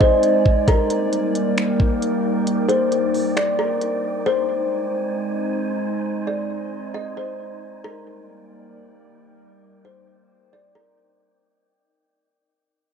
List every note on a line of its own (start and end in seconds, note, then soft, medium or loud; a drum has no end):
0.00 0.64 G#3 medium
0.00 0.64 C4 medium
0.00 0.64 D#4 medium
0.00 4.22 D#4 medium
0.00 0.64 C5 medium
0.00 2.43 D5 medium
0.00 0.64 G#5 medium
0.00 kick medium
0.23 closed hi-hat medium
0.46 kick medium
0.68 4.22 G3 medium
0.68 4.22 A#3 medium
0.68 4.22 D#4 medium
0.68 4.22 A#4 medium
0.68 1.54 A#4 medium
0.68 4.22 D5 medium
0.68 4.22 G5 medium
0.68 kick loud
0.68 closed hi-hat medium
0.90 closed hi-hat medium
1.13 closed hi-hat medium
1.35 closed hi-hat medium
1.58 finger snap loud
1.58 closed hi-hat medium
1.80 kick medium
2.02 closed hi-hat medium
2.47 7.80 C5 medium
2.47 closed hi-hat medium
2.68 2.90 C5 medium
2.68 closed hi-hat medium
2.92 closed hi-hat medium
3.14 open hi-hat soft
3.37 3.58 D5 medium
3.37 finger snap loud
3.37 closed hi-hat medium
3.59 3.80 A#4 medium
3.81 closed hi-hat medium
4.26 7.81 G#3 medium
4.26 7.81 C4 medium
4.26 11.38 D#4 medium
4.26 11.39 D#4 medium
4.26 7.81 C5 medium
4.26 5.12 C5 loud
4.26 7.81 D#5 medium
4.26 7.81 G#5 medium
6.27 6.49 D5 medium
6.94 7.16 D#5 medium
7.17 7.80 C5 medium
7.84 11.39 G3 medium
7.84 11.39 A#3 medium
7.84 11.39 A#4 medium
7.84 8.70 A#4 medium
7.84 9.62 D5 medium
7.84 11.39 D5 medium
7.84 11.39 G5 medium
9.64 11.41 C5 medium
9.85 10.07 C5 medium
10.53 10.74 D5 medium
10.75 10.96 A#4 medium